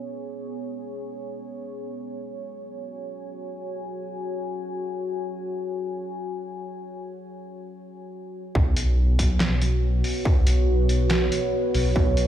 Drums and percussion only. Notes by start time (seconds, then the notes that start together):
8.55 kick
8.77 closed hi-hat
9.19 kick, closed hi-hat
9.40 snare, clap, closed hi-hat
9.62 closed hi-hat
10.04 open hi-hat
10.25 kick
10.47 closed hi-hat
10.89 closed hi-hat
11.11 snare, clap, closed hi-hat
11.32 closed hi-hat
11.74 open hi-hat
11.96 kick
12.17 closed hi-hat